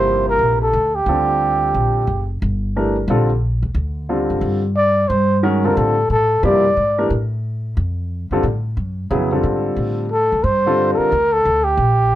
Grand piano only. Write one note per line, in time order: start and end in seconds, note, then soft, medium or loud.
0.00 0.66 C3 medium
0.00 0.67 F3 medium
0.00 0.66 A#3 medium
0.00 0.67 E4 medium
0.00 0.66 G4 medium
1.08 2.01 D3 medium
1.08 2.01 G3 medium
1.08 2.02 C4 medium
1.08 2.01 F4 medium
1.08 2.02 A4 medium
2.76 2.95 E3 medium
2.76 2.95 A3 soft
2.76 2.95 D4 medium
2.76 2.95 G4 medium
2.76 2.95 A#4 medium
3.10 3.29 D3 medium
3.10 3.29 G3 medium
3.10 3.29 C4 medium
3.10 3.29 F4 medium
3.10 3.29 A4 medium
4.09 4.60 D3 medium
4.09 4.60 G3 medium
4.09 4.60 C4 medium
4.09 4.60 F4 medium
4.09 4.60 A4 medium
5.43 5.62 D#3 medium
5.43 5.62 G#3 medium
5.43 5.63 C#4 medium
5.43 5.62 F#4 medium
5.43 5.63 A#4 medium
5.65 5.94 D3 medium
5.65 5.94 G3 medium
5.65 5.94 C4 medium
5.65 5.94 F4 medium
5.65 5.94 A4 medium
6.43 6.62 C3 medium
6.43 6.63 F3 medium
6.43 6.63 A#3 medium
6.43 6.63 E4 medium
6.43 6.63 G4 medium
6.98 7.09 E3 medium
6.98 7.09 A3 medium
6.98 7.09 D4 medium
6.98 7.09 G4 medium
6.98 7.09 A#4 medium
8.32 8.43 D3 medium
8.32 8.43 G3 medium
8.32 8.43 C4 medium
8.32 8.43 F4 medium
8.32 8.43 A4 medium
9.11 9.30 C#3 medium
9.11 9.30 F#3 medium
9.11 9.30 B3 medium
9.11 9.30 E4 medium
9.11 9.30 G#4 medium
9.32 10.04 D3 medium
9.32 10.04 G3 medium
9.32 10.04 C4 medium
9.32 10.04 F4 medium
9.32 10.04 A4 medium
10.66 11.09 D3 medium
10.66 11.09 G3 medium
10.66 11.10 C4 medium
10.66 11.09 F4 medium
10.66 11.10 A4 medium